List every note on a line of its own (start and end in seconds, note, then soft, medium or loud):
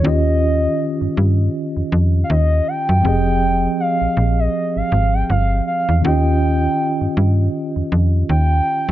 0.02 0.68 D#2 loud
0.02 2.99 D#3 medium
0.02 3.00 C#4 medium
0.02 3.00 F4 medium
0.02 1.54 D#5 loud
0.07 3.01 G4 medium
0.07 3.02 D#5 medium
1.01 1.07 G2 soft
1.17 1.49 G2 medium
1.77 1.83 F2 medium
1.92 2.24 F2 medium
2.24 2.31 F5 medium
2.30 2.61 D#2 loud
2.30 2.69 D#5 loud
2.68 3.80 G5 loud
2.89 3.02 F#2 medium
3.02 3.68 F1 loud
3.02 5.99 F3 medium
3.02 6.00 C4 medium
3.02 6.00 G4 medium
3.07 6.01 G#4 medium
3.07 6.02 D#5 medium
3.80 4.41 F5 loud
4.01 4.08 A#1 soft
4.17 4.48 A#1 medium
4.39 4.76 D#5 medium
4.76 4.82 G#1 soft
4.76 5.15 F5 loud
4.92 5.23 G#1 loud
5.14 5.29 G5 loud
5.30 5.61 G1 loud
5.30 5.64 F5 loud
5.67 6.02 F5 medium
5.89 6.02 E2 medium
6.01 6.68 D#2 loud
6.01 8.92 D#3 medium
6.01 8.92 C#4 medium
6.01 8.92 F4 medium
6.01 7.50 G5 loud
6.06 8.92 G4 medium
6.06 8.92 D#5 medium
7.01 7.07 G2 soft
7.17 7.48 G2 medium
7.76 7.82 F2 medium
7.92 8.23 F2 medium
8.29 8.61 D#2 loud
8.29 8.92 G5 loud
8.89 8.92 F#2 medium